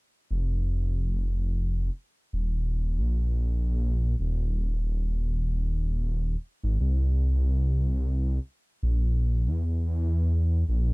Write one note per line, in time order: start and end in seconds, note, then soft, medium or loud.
0.31 1.90 F1 medium
2.33 2.99 D#1 medium
2.98 4.15 A#1 medium
4.19 6.36 D#1 medium
6.63 6.78 G#1 medium
6.81 8.39 C2 medium
8.83 9.49 A#1 medium
9.47 10.64 E2 medium
10.69 10.94 A#1 medium